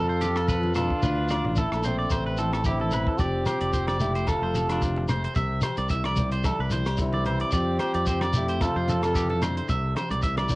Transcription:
Already playing: F2 F3 C4 F4 A4
0.09 C5
0.21 F4 G4, closed hi-hat, high conga, shekere
0.36 A4, cross-stick, low agogo
0.48 F3 B4, kick, shekere
0.63 high conga
0.74 E3 D4 F4 A4, cross-stick, closed hi-hat, low conga, low agogo, shekere
0.90 kick
1.02 D2 D3 D4 B4, kick, shekere
1.28 D4 D5, cross-stick, closed hi-hat, high conga, low agogo, shekere
1.44 A1, muted clean electric guitar stroke, high conga, low conga
1.56 A3 E4 A4, kick, shekere
1.60 A3
1.72 A#1 A4, cross-stick, low agogo
1.83 C4 D4 C5, closed hi-hat, low conga, shekere
1.87 A3
1.99 D5
2.10 A1 A2 C4 C5, kick, cross-stick, low agogo, shekere
2.26 B4
2.37 E4 A4, closed hi-hat, high conga, shekere
2.53 A4, cross-stick, low agogo
2.64 D3 E4 G4, kick, shekere
2.69 C4
2.80 A4, high conga
2.91 E3 B4, closed hi-hat, low conga, low agogo, shekere
3.07 A4, kick
3.18 F1 F3 C4 G4 D5, kick, closed hi-hat, shekere
3.46 C5, muted nylon-string guitar stroke, cross-stick, closed hi-hat, high conga, low agogo, shekere
3.60 F1 D5, closed hi-hat, shekere
3.73 C4 C5, kick, closed hi-hat, shekere
3.87 D5, cross-stick, high conga, low agogo
4.00 A3 E4 G4, closed hi-hat, low conga, shekere
4.15 C5, closed hi-hat, shekere
4.27 C3 F4 A4, kick, cross-stick, closed hi-hat, high conga, low agogo, shekere
4.42 F1 C5
4.54 G4 A4, closed hi-hat, high conga, shekere
4.69 D4 F4, cross-stick, closed hi-hat, low agogo, shekere
4.81 C4, kick, closed hi-hat, shekere
4.96 muted clean electric guitar stroke, high conga
5.08 C4 C5, cross-stick, closed hi-hat, low conga, low agogo, shekere
5.24 C5, closed hi-hat
5.35 C2 C3 E5, kick, closed hi-hat, shekere
5.61 G4 C5, cross-stick, closed hi-hat, high conga, low agogo, shekere
5.77 C2 D5, closed hi-hat, shekere
5.89 E4 E5, kick, closed hi-hat, shekere
6.04 D5, cross-stick, high conga, low agogo
6.16 G3, kick, closed hi-hat, low conga, shekere
6.31 C5, closed hi-hat, shekere
6.44 C3 A4, kick, cross-stick, closed hi-hat, high conga, low agogo, shekere
6.59 C2 B4
6.70 E4 C5, closed hi-hat, high conga, shekere
6.85 G4, cross-stick, closed hi-hat, low agogo, shekere
6.97 D3 C4 E4, kick, closed hi-hat, shekere
7.13 D5, high conga
7.25 E3 C5, closed hi-hat, low conga, low agogo
7.40 D5, closed hi-hat
7.51 F2 F3 C4 G4 D5, kick, closed hi-hat, shekere
7.79 C4 C5, cross-stick, closed hi-hat, high conga, low agogo
7.94 F2 D5, closed hi-hat, shekere
8.06 C4 C5, kick, closed hi-hat, shekere
8.21 D5, cross-stick, high conga, low agogo
8.33 A3 E4 G4, closed hi-hat, low conga, shekere
8.48 C5, closed hi-hat, shekere
8.60 C3 C4 F4 A4, kick, cross-stick, closed hi-hat, high conga, low agogo, shekere
8.76 F2 C5
8.88 C4 A4, closed hi-hat, high conga, shekere
9.02 F4 A4, cross-stick, closed hi-hat, low agogo, shekere
9.15 E3 G4, kick, closed hi-hat, shekere
9.30 A4, high conga
9.42 D3 C5, cross-stick, closed hi-hat, low conga, low agogo, shekere
9.57 C5, closed hi-hat
9.68 C2 C3 E5, kick, closed hi-hat, shekere
9.96 G4 C5, cross-stick, closed hi-hat, high conga, low agogo
10.10 C2 D5, closed hi-hat, low conga, shekere
10.22 E4 E5, kick, closed hi-hat, shekere
10.37 D5, cross-stick, high conga, low agogo
10.49 G3, kick, closed hi-hat, low conga, shekere

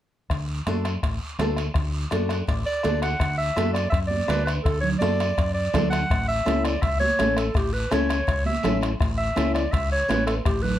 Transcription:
0.30 D2, bombo low, bombo rim, high timbale, long guiro
0.67 F#2 D4 F#4 A4, bombo rim, high conga, high timbale, short guiro
0.85 bombo rim, high timbale, short guiro
1.03 A1, bombo low, bombo rim, high timbale, long guiro
1.39 D2 D4 F#4 A4, bombo rim, high conga, high timbale, low timbale, short guiro
1.56 bombo rim, high timbale, short guiro
1.74 D2, bombo low, bombo rim, high timbale, long guiro
2.11 F#2 D4 F#4 A4, bombo rim, high conga, high timbale, short guiro
2.29 F#5, bombo rim, high timbale, short guiro
2.47 A1 D5, bombo low, bombo rim, high timbale, long guiro
2.66 D5
2.83 D2 D4 F#4 A4, bombo rim, high conga, high timbale, short guiro
3.02 F#5, bombo rim, high timbale, short guiro
3.20 D2, bombo low, bombo rim, high timbale, long guiro
3.38 E5
3.56 F#2 D4 F#4 A4, bombo rim, high conga, high timbale, short guiro
3.73 D5, bombo rim, high timbale, short guiro
3.90 F#2 E5, bombo low, bombo rim, long guiro
3.94 high timbale
4.07 D5, high conga
4.28 D2 D4 F#4 B4, bombo rim, high conga, high timbale, low timbale, short guiro
4.45 B4, bombo rim, high timbale, short guiro
4.63 D2 A4, bombo low, bombo rim, high timbale, long guiro
4.81 C#5, low conga
4.99 F#2 D4 F#4 A4 D5, bombo rim, high conga, high timbale, short guiro
5.20 bombo rim, high timbale, short guiro
5.37 F#2, bombo low, bombo rim, high timbale, long guiro
5.54 D5
5.74 D2 D4 F#4 A4, bombo low, bombo rim, high conga, low conga, high timbale, low timbale, short guiro
5.90 F#5, bombo rim, high timbale, short guiro
6.10 A1, bombo low, bombo rim, high timbale, long guiro
6.28 E5
6.45 C#2 C#4 E4 A4, bombo rim, high conga, high timbale, short guiro
6.65 D5, bombo rim, high timbale, short guiro
6.82 C#2 E5, bombo low, bombo rim, high timbale, long guiro
7.00 C#5, high conga
7.19 A1 C#4 E4 A4, bombo rim, high conga, high timbale, short guiro
7.37 A4, bombo rim, high timbale, short guiro
7.54 A1 G4, bombo low, bombo rim, high timbale, long guiro
7.73 B4
7.91 C#2 C#4 E4 A4 C#5, bombo rim, high conga, high timbale, short guiro
8.09 bombo rim, high timbale, short guiro
8.27 C#2, bombo low, bombo rim, high timbale, long guiro
8.46 E5, high conga
8.63 A1 C#4 E4 A4, bombo rim, high conga, low conga, high timbale, short guiro
8.81 bombo rim, high timbale, short guiro
9.00 A1, bombo low, bombo rim, high timbale, long guiro
9.17 E5
9.36 C#2 C#4 E4 A4, bombo rim, high conga, high timbale, short guiro
9.55 D5, bombo rim, high timbale, short guiro
9.72 C#2 E5, bombo low, bombo rim, high timbale, long guiro
9.92 C#5
10.08 A1 C#4 E4 B4, bombo rim, high conga, high timbale, low timbale, short guiro
10.26 A4, bombo rim, high timbale, short guiro
10.45 A1 G4, bombo low, bombo rim, high timbale, long guiro
10.62 B4, low conga

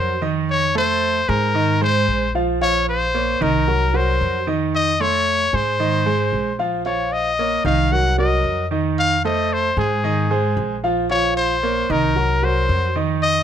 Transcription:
Already playing: F2 F#3 F#4 A#4 C5
0.21 D#3 D#4 D#5
0.50 C#5
0.75 A3 A4 C5
1.28 G#2 G#3 G#4 A#4 C5
1.54 D#3 D#4 D#5
1.81 G#3 G#4 C5
2.08 A#1
2.35 F3 F4 F5
2.61 F3 F4 C#5 F5
2.89 C5
3.14 A#3 A#4 C#5
3.41 C2 D#3 D#4 A#4 D#5
3.68 F#3 F#4 A#4
3.94 F#3 F#4 A#4 C5
4.21 F2
4.47 D#3 D#4 D#5
4.75 D#5
5.00 A3 A4 C#5 C6
5.53 G#2 G#3 G#4 C5
5.80 D#3 D#4 D#5
6.06 G#3 G#4 C5
6.32 A#1
6.59 F3 F4 F5
6.85 F3 F4 C#5 F5
7.12 D#5
7.39 A#3 A#4 C#5
7.65 C2 D#3 D#4 D#5 F5
7.92 F#3 F#4 A#4 F#5
8.18 F#3 F#4 A#4 D#5
8.44 F2
8.71 D#3 D#4 D#5
8.99 F5
9.25 A3 A4 C5 D#5
9.53 C5
9.77 G#2 G#3 G#4 C5
10.04 D#3 D#4 D#5
10.30 G#3 G#4 C5
10.57 A#1
10.84 F3 F4 F5
11.10 F3 F4 C#5 F5
11.37 C5
11.63 A#3 A#4 C#5
11.89 C2 D#3 D#4 A#4 D#5
12.16 F#3 F#4 A#4
12.43 F#3 F#4 A#4 C5
12.69 F2
12.95 D#3 D#4 D#5
13.23 D#5

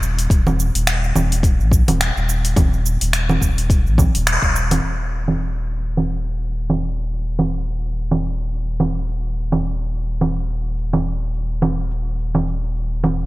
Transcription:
Already playing: D#1
0.03 shaker
0.19 open hi-hat, shaker
0.30 D#1, kick, open hi-hat, shaker
0.47 low conga, shaker
0.60 shaker
0.75 D#1, open hi-hat, shaker
0.87 finger snap, open hi-hat, shaker
1.04 shaker
1.15 D#1, low conga, shaker
1.32 open hi-hat, shaker
1.43 kick, open hi-hat, shaker
1.59 A#1, shaker
1.72 kick, shaker
1.88 D#1, open hi-hat, low conga, shaker
2.01 finger snap, open hi-hat, shaker
2.16 D#1, shaker
2.29 shaker
2.45 open hi-hat, shaker
2.56 D#1, kick, open hi-hat, low conga, shaker
2.73 shaker
2.86 shaker
3.01 D#1, open hi-hat, shaker
3.13 finger snap, open hi-hat, shaker
3.29 low conga, shaker
3.41 D#1, kick, shaker
3.58 open hi-hat, shaker
3.70 kick, open hi-hat, shaker
3.86 A#1, shaker
3.98 kick, low conga, shaker
4.14 D#1, open hi-hat, shaker
4.27 finger snap, open hi-hat, shaker
4.42 D#1, kick, shaker
4.56 shaker
4.71 open hi-hat, low conga, shaker
4.83 D#1, shaker
5.01 shaker
5.12 shaker
5.28 low conga, shaker
5.57 shaker
5.69 shaker
5.85 shaker
5.97 low conga, shaker
6.14 shaker
6.26 shaker
6.42 shaker
6.54 shaker
6.70 low conga, shaker
6.82 shaker
6.98 shaker
7.11 shaker
7.27 shaker
7.39 low conga, shaker
7.55 shaker
7.67 shaker
7.83 shaker
7.96 shaker
8.11 low conga, shaker
8.24 shaker
8.40 shaker
8.53 shaker
8.69 shaker
8.80 low conga, shaker
8.97 shaker
9.08 shaker
9.24 shaker
9.37 shaker
9.52 low conga, shaker
9.65 shaker
9.81 shaker
9.93 shaker
10.10 shaker
10.21 low conga, shaker
10.38 shaker
10.50 shaker
10.66 shaker
10.78 shaker
10.93 low conga, shaker
11.06 shaker
11.22 shaker
11.34 shaker
11.50 shaker
11.62 low conga, shaker
11.79 shaker
11.91 shaker
12.07 shaker
12.19 shaker
12.35 low conga, shaker
12.48 shaker
12.64 shaker
12.76 shaker
12.92 shaker
13.04 low conga, shaker
13.20 shaker

